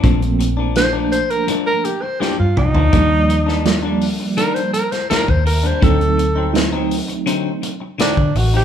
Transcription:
<<
  \new Staff \with { instrumentName = "Tenor saxophone" } { \time 4/4 \key g \minor \tempo 4 = 83 r4 c''16 r16 c''16 bes'16 r16 bes'16 g'16 c''16 g'16 f'16 ees'8~ | ees'4. r8 bes'16 c''16 bes'16 c''16 bes'16 c''16 bes'16 c''16 | a'4 r2 d'8 fis'16 g'16 | }
  \new Staff \with { instrumentName = "Clean electric guitar" } { \time 4/4 \key g \minor <g, f bes d'>16 r8 <f bes d'>16 r16 <f bes d'>16 r8 <g, f bes d'>16 r8. <g, f bes d'>16 r8 <f bes d'>16 | <ees g bes d'>16 r8 <g bes d'>16 r16 <g bes d'>16 r8 <ees g bes d'>16 r8. <ees g bes d'>16 r8 <g bes d'>16 | <d fis c' ees'>16 r8 <fis c' ees'>16 r16 <fis c' ees'>16 r8 <d fis c' ees'>16 r8. <d fis c' ees'>16 r8 <fis c' ees'>16 | }
  \new Staff \with { instrumentName = "Reed electric piano" } { \time 4/4 \key g \minor <f a bes c'>4 <f a bes d'>4.~ <f a bes d'>16 r4 r16 | <f g bes d''>4 <f g bes d''>4.~ <f g bes d''>16 r4 r16 | <fis a c' ees'>4 <fis a c' ees'>4.~ <fis a c' ees'>16 r4 r16 | }
  \new Staff \with { instrumentName = "Fingered electric bass" } { \clef bass \time 4/4 \key g \minor bes,,2 r4 r16 g,16 c,16 d,16 | ees,2 r4 r16 ees,8. | d,2 r4 r16 d16 a,,8 | }
  \new DrumStaff \with { instrumentName = "Drums" } \drummode { \time 4/4 <hh bd>16 hh16 hh8 <hh sn>8 hh16 hh16 hh8 hh8 sn8 toml16 tomfh16 | <hh bd>8 hh16 sn16 <hh sn>8 hho8 hh16 hh16 hh16 <hh sn>16 <hh sn>16 bd16 hho16 hh16 | <hh bd>16 hh16 hh8 <hh sn>8 hho16 hh16 hh8 hh8 <hh sn>16 bd16 hho8 | }
>>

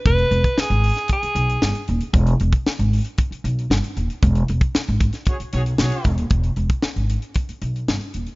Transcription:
<<
  \new Staff \with { instrumentName = "Alto saxophone" } { \time 4/4 \key e \major \tempo 4 = 115 b'4 gis'4 gis'4. r8 | r1 | r1 | r1 | }
  \new Staff \with { instrumentName = "Horn section" } { \time 4/4 \key e \major r1 | r1 | r2 <fis' gis' cis''>16 r16 <fis' gis' cis''>16 r16 <fis' gis' cis''>8. r16 | r1 | }
  \new Staff \with { instrumentName = "Upright bass" } { \clef bass \time 4/4 \key e \major e,,8 e,,16 r8 gis,,8 r8. b,,8 g,,16 r16 dis,,16 r16 | e,,8 e,,16 r8 gis,,8 r8. b,,8 g,,16 r16 dis,,16 r16 | e,,8 e,,16 r8 gis,,8 r8. b,,8 b,,16 r16 e,,16 dis,,16 | e,,8 e,,16 r8 gis,,8 r8. b,,8 g,,16 r16 dis,,16 r16 | }
  \new DrumStaff \with { instrumentName = "Drums" } \drummode { \time 4/4 <hh bd>16 hh16 hh16 <hh bd>16 sn16 hh16 hho16 <hh sn>16 <hh bd>16 hh16 hh16 hh16 sn16 hh16 hh16 hh16 | <hh bd>16 hh16 hh16 <hh bd>16 sn16 hh16 hho16 hh16 <hh bd>16 hh16 hh16 hh16 sn16 hh16 hh16 hh16 | <hh bd>16 hh16 hh16 <hh bd>16 sn16 hh16 <hh bd>16 <hh sn>16 <hh bd>16 hh16 hh16 hh16 sn16 hh16 <hh bd>16 hh16 | <hh bd>16 hh16 hh16 <hh bd>16 sn16 hh16 hh16 hh16 <hh bd>16 hh16 hh16 hh16 sn16 hh16 hh16 hh16 | }
>>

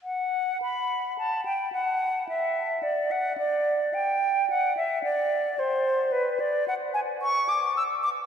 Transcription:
\new Staff \with { instrumentName = "Flute" } { \time 3/4 \key d \major \tempo 4 = 109 fis''4 b''4 a''8 g''8 | fis''4 e''4 d''8 fis''8 | d''4 g''4 fis''8 e''8 | d''4 c''4 b'8 d''8 |
\key d \lydian fis''8 gis''8 cis'''8 d'''8 e'''8 d'''8 | }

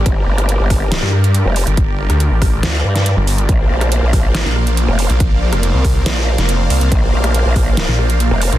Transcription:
<<
  \new Staff \with { instrumentName = "Supersaw synth" } { \time 4/4 \key bes \major \tempo 4 = 140 <g' bes' d''>1~ | <g' bes' d''>1 | <bes bes' c'' d'' f''>1~ | <bes bes' c'' d'' f''>1~ |
<bes bes' c'' d'' f''>1 | }
  \new Staff \with { instrumentName = "Detuned saw bass" } { \clef bass \time 4/4 \key bes \major r2 r16 g,4 r8 g,,16~ | g,,16 g,,8 d,8 a,,8. r4 r16 g,,8. | r2 r16 bes,,4 r8 bes,,16~ | bes,,16 bes,,8 f,,8 c,8. r8. f,,8. c,16 c,16 |
r2 r16 bes,,4 r8 bes,,16 | }
  \new Staff \with { instrumentName = "Wobble bass" } { \clef bass \time 4/4 \key bes \major g,,8 g,,8. g,,4 r4 f,,8 r16 | r2 d,8 g,8. r8. | bes,,8 bes,,8. bes,,4 r4 f,,8 r16 | r2 bes,,8. r4 r16 |
bes,,8 bes,,8. bes,,4 r4 f,,8 r16 | }
  \new DrumStaff \with { instrumentName = "Drums" } \drummode { \time 4/4 <hh bd>8. <hh ss>16 hh8 <hho bd ss>8 <hh sn>8 ss16 hh16 hh8 hho16 hh16 | <hh bd>8. <hh ss>16 hh8 <hho bd ss>8 <hh sn>8. <hh sn>16 hh8 hho16 hh16 | <hh bd>8. <hh ss>16 hh8 <hho bd ss>8 <hh sn>8 ss16 hh16 hh8 hho16 hh16 | <hh bd>8. <hh ss>16 hh8 <hho bd ss>8 <hh sn>8. <hh sn>16 hh8 hho16 hh16 |
<hh bd>8. <hh ss>16 hh8 <hho bd ss>8 <hh sn>8 ss16 hh16 hh8 hho16 hh16 | }
>>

